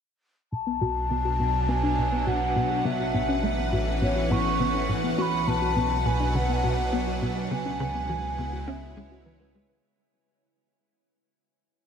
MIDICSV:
0, 0, Header, 1, 6, 480
1, 0, Start_track
1, 0, Tempo, 582524
1, 429, Time_signature, 4, 2, 24, 8
1, 9778, End_track
2, 0, Start_track
2, 0, Title_t, "Flute"
2, 0, Program_c, 0, 73
2, 432, Note_on_c, 0, 81, 99
2, 1390, Note_on_c, 0, 80, 94
2, 1402, Note_off_c, 0, 81, 0
2, 1870, Note_on_c, 0, 78, 90
2, 1882, Note_off_c, 0, 80, 0
2, 2348, Note_on_c, 0, 76, 98
2, 2361, Note_off_c, 0, 78, 0
2, 3306, Note_off_c, 0, 76, 0
2, 3311, Note_on_c, 0, 73, 98
2, 3551, Note_on_c, 0, 85, 103
2, 3563, Note_off_c, 0, 73, 0
2, 4048, Note_off_c, 0, 85, 0
2, 4269, Note_on_c, 0, 85, 97
2, 4296, Note_on_c, 0, 83, 106
2, 4304, Note_off_c, 0, 85, 0
2, 4511, Note_on_c, 0, 81, 99
2, 4524, Note_off_c, 0, 83, 0
2, 4993, Note_on_c, 0, 80, 90
2, 5005, Note_off_c, 0, 81, 0
2, 5232, Note_on_c, 0, 78, 86
2, 5244, Note_off_c, 0, 80, 0
2, 5372, Note_on_c, 0, 80, 80
2, 5380, Note_off_c, 0, 78, 0
2, 5400, Note_on_c, 0, 78, 86
2, 5409, Note_off_c, 0, 80, 0
2, 5512, Note_on_c, 0, 76, 80
2, 5520, Note_off_c, 0, 78, 0
2, 5540, Note_on_c, 0, 78, 86
2, 5549, Note_off_c, 0, 76, 0
2, 5951, Note_off_c, 0, 78, 0
2, 6188, Note_on_c, 0, 80, 119
2, 7148, Note_on_c, 0, 76, 101
2, 7161, Note_off_c, 0, 80, 0
2, 7869, Note_off_c, 0, 76, 0
2, 9778, End_track
3, 0, Start_track
3, 0, Title_t, "Synth arpeggio sound"
3, 0, Program_c, 1, 84
3, 550, Note_on_c, 1, 59, 74
3, 658, Note_off_c, 1, 59, 0
3, 669, Note_on_c, 1, 66, 70
3, 742, Note_off_c, 1, 66, 0
3, 910, Note_on_c, 1, 59, 78
3, 1018, Note_off_c, 1, 59, 0
3, 1030, Note_on_c, 1, 66, 71
3, 1138, Note_off_c, 1, 66, 0
3, 1149, Note_on_c, 1, 59, 73
3, 1258, Note_off_c, 1, 59, 0
3, 1389, Note_on_c, 1, 59, 82
3, 1433, Note_off_c, 1, 59, 0
3, 1509, Note_on_c, 1, 62, 98
3, 1617, Note_off_c, 1, 62, 0
3, 1749, Note_on_c, 1, 59, 73
3, 1857, Note_off_c, 1, 59, 0
3, 1869, Note_on_c, 1, 66, 77
3, 1941, Note_off_c, 1, 66, 0
3, 2109, Note_on_c, 1, 59, 74
3, 2217, Note_off_c, 1, 59, 0
3, 2229, Note_on_c, 1, 66, 76
3, 2337, Note_off_c, 1, 66, 0
3, 2348, Note_on_c, 1, 59, 82
3, 2457, Note_off_c, 1, 59, 0
3, 2588, Note_on_c, 1, 59, 70
3, 2632, Note_off_c, 1, 59, 0
3, 2708, Note_on_c, 1, 61, 100
3, 2817, Note_off_c, 1, 61, 0
3, 2949, Note_on_c, 1, 59, 70
3, 3057, Note_off_c, 1, 59, 0
3, 3069, Note_on_c, 1, 66, 73
3, 3141, Note_off_c, 1, 66, 0
3, 3309, Note_on_c, 1, 59, 81
3, 3417, Note_off_c, 1, 59, 0
3, 3428, Note_on_c, 1, 66, 75
3, 3537, Note_off_c, 1, 66, 0
3, 3549, Note_on_c, 1, 59, 71
3, 3657, Note_off_c, 1, 59, 0
3, 3789, Note_on_c, 1, 59, 83
3, 3832, Note_off_c, 1, 59, 0
3, 3909, Note_on_c, 1, 61, 99
3, 4017, Note_off_c, 1, 61, 0
3, 4149, Note_on_c, 1, 59, 75
3, 4257, Note_off_c, 1, 59, 0
3, 4268, Note_on_c, 1, 66, 79
3, 4341, Note_off_c, 1, 66, 0
3, 4509, Note_on_c, 1, 59, 74
3, 4617, Note_off_c, 1, 59, 0
3, 4629, Note_on_c, 1, 66, 75
3, 4737, Note_off_c, 1, 66, 0
3, 4749, Note_on_c, 1, 59, 85
3, 4857, Note_off_c, 1, 59, 0
3, 4989, Note_on_c, 1, 59, 76
3, 5032, Note_off_c, 1, 59, 0
3, 5108, Note_on_c, 1, 62, 100
3, 5217, Note_off_c, 1, 62, 0
3, 5348, Note_on_c, 1, 59, 73
3, 5457, Note_off_c, 1, 59, 0
3, 5468, Note_on_c, 1, 66, 75
3, 5541, Note_off_c, 1, 66, 0
3, 5707, Note_on_c, 1, 59, 78
3, 5817, Note_off_c, 1, 59, 0
3, 5828, Note_on_c, 1, 66, 77
3, 5937, Note_off_c, 1, 66, 0
3, 5948, Note_on_c, 1, 59, 70
3, 6057, Note_off_c, 1, 59, 0
3, 6188, Note_on_c, 1, 59, 81
3, 6232, Note_off_c, 1, 59, 0
3, 6308, Note_on_c, 1, 61, 105
3, 6417, Note_off_c, 1, 61, 0
3, 6548, Note_on_c, 1, 59, 74
3, 6657, Note_off_c, 1, 59, 0
3, 6669, Note_on_c, 1, 66, 81
3, 6741, Note_off_c, 1, 66, 0
3, 6909, Note_on_c, 1, 59, 72
3, 7017, Note_off_c, 1, 59, 0
3, 7028, Note_on_c, 1, 66, 71
3, 7137, Note_off_c, 1, 66, 0
3, 7148, Note_on_c, 1, 59, 82
3, 7257, Note_off_c, 1, 59, 0
3, 7388, Note_on_c, 1, 61, 102
3, 7461, Note_off_c, 1, 61, 0
3, 7508, Note_on_c, 1, 66, 74
3, 7581, Note_off_c, 1, 66, 0
3, 7627, Note_on_c, 1, 71, 82
3, 7672, Note_off_c, 1, 71, 0
3, 7748, Note_on_c, 1, 71, 75
3, 7821, Note_off_c, 1, 71, 0
3, 7867, Note_on_c, 1, 71, 76
3, 7940, Note_off_c, 1, 71, 0
3, 7987, Note_on_c, 1, 71, 100
3, 8060, Note_off_c, 1, 71, 0
3, 9778, End_track
4, 0, Start_track
4, 0, Title_t, "Ambient pad"
4, 0, Program_c, 2, 92
4, 429, Note_on_c, 2, 47, 76
4, 534, Note_on_c, 2, 62, 84
4, 608, Note_on_c, 2, 54, 78
4, 1293, Note_on_c, 2, 71, 81
4, 1293, Note_on_c, 2, 78, 66
4, 2349, Note_off_c, 2, 47, 0
4, 2349, Note_on_c, 2, 45, 83
4, 2350, Note_off_c, 2, 54, 0
4, 2350, Note_off_c, 2, 62, 0
4, 2487, Note_on_c, 2, 52, 75
4, 2777, Note_on_c, 2, 61, 74
4, 4267, Note_on_c, 2, 47, 84
4, 4269, Note_off_c, 2, 45, 0
4, 4269, Note_off_c, 2, 52, 0
4, 4270, Note_off_c, 2, 61, 0
4, 4554, Note_on_c, 2, 54, 69
4, 5041, Note_on_c, 2, 62, 75
4, 6188, Note_off_c, 2, 47, 0
4, 6188, Note_on_c, 2, 49, 72
4, 6189, Note_off_c, 2, 54, 0
4, 6189, Note_off_c, 2, 62, 0
4, 6407, Note_on_c, 2, 64, 77
4, 6438, Note_on_c, 2, 56, 77
4, 6957, Note_off_c, 2, 78, 0
4, 6982, Note_on_c, 2, 73, 67
4, 8109, Note_off_c, 2, 49, 0
4, 8109, Note_off_c, 2, 64, 0
4, 8109, Note_off_c, 2, 71, 0
4, 8109, Note_off_c, 2, 73, 0
4, 8110, Note_off_c, 2, 56, 0
4, 9778, End_track
5, 0, Start_track
5, 0, Title_t, "Analog synth bass"
5, 0, Program_c, 3, 38
5, 429, Note_on_c, 3, 47, 75
5, 650, Note_off_c, 3, 47, 0
5, 669, Note_on_c, 3, 47, 97
5, 758, Note_off_c, 3, 47, 0
5, 909, Note_on_c, 3, 50, 68
5, 998, Note_off_c, 3, 50, 0
5, 1149, Note_on_c, 3, 47, 73
5, 1296, Note_off_c, 3, 47, 0
5, 1389, Note_on_c, 3, 59, 79
5, 1536, Note_off_c, 3, 59, 0
5, 1629, Note_on_c, 3, 47, 68
5, 1850, Note_off_c, 3, 47, 0
5, 1869, Note_on_c, 3, 47, 73
5, 2090, Note_off_c, 3, 47, 0
5, 2109, Note_on_c, 3, 47, 91
5, 2198, Note_off_c, 3, 47, 0
5, 2349, Note_on_c, 3, 49, 79
5, 2437, Note_off_c, 3, 49, 0
5, 2588, Note_on_c, 3, 45, 74
5, 2736, Note_off_c, 3, 45, 0
5, 2828, Note_on_c, 3, 57, 73
5, 2976, Note_off_c, 3, 57, 0
5, 3069, Note_on_c, 3, 45, 75
5, 3290, Note_off_c, 3, 45, 0
5, 3308, Note_on_c, 3, 45, 77
5, 3530, Note_off_c, 3, 45, 0
5, 3549, Note_on_c, 3, 45, 89
5, 3637, Note_off_c, 3, 45, 0
5, 3789, Note_on_c, 3, 49, 72
5, 3877, Note_off_c, 3, 49, 0
5, 4029, Note_on_c, 3, 45, 73
5, 4176, Note_off_c, 3, 45, 0
5, 4268, Note_on_c, 3, 59, 75
5, 4416, Note_off_c, 3, 59, 0
5, 4509, Note_on_c, 3, 47, 72
5, 4730, Note_off_c, 3, 47, 0
5, 4749, Note_on_c, 3, 47, 75
5, 4970, Note_off_c, 3, 47, 0
5, 4989, Note_on_c, 3, 47, 99
5, 5077, Note_off_c, 3, 47, 0
5, 5229, Note_on_c, 3, 50, 78
5, 5318, Note_off_c, 3, 50, 0
5, 5469, Note_on_c, 3, 47, 75
5, 5617, Note_off_c, 3, 47, 0
5, 5708, Note_on_c, 3, 59, 73
5, 5856, Note_off_c, 3, 59, 0
5, 5949, Note_on_c, 3, 47, 75
5, 6170, Note_off_c, 3, 47, 0
5, 6188, Note_on_c, 3, 49, 77
5, 6410, Note_off_c, 3, 49, 0
5, 6428, Note_on_c, 3, 49, 99
5, 6517, Note_off_c, 3, 49, 0
5, 6668, Note_on_c, 3, 52, 73
5, 6757, Note_off_c, 3, 52, 0
5, 6908, Note_on_c, 3, 49, 74
5, 7056, Note_off_c, 3, 49, 0
5, 7149, Note_on_c, 3, 61, 83
5, 7296, Note_off_c, 3, 61, 0
5, 7390, Note_on_c, 3, 56, 94
5, 7478, Note_off_c, 3, 56, 0
5, 7630, Note_on_c, 3, 52, 71
5, 7777, Note_off_c, 3, 52, 0
5, 7869, Note_on_c, 3, 56, 77
5, 7958, Note_off_c, 3, 56, 0
5, 9778, End_track
6, 0, Start_track
6, 0, Title_t, "Sub bass"
6, 0, Program_c, 4, 38
6, 430, Note_on_c, 4, 35, 79
6, 2326, Note_off_c, 4, 35, 0
6, 2350, Note_on_c, 4, 33, 82
6, 4246, Note_off_c, 4, 33, 0
6, 4270, Note_on_c, 4, 35, 87
6, 6166, Note_off_c, 4, 35, 0
6, 6190, Note_on_c, 4, 37, 88
6, 8086, Note_off_c, 4, 37, 0
6, 9778, End_track
0, 0, End_of_file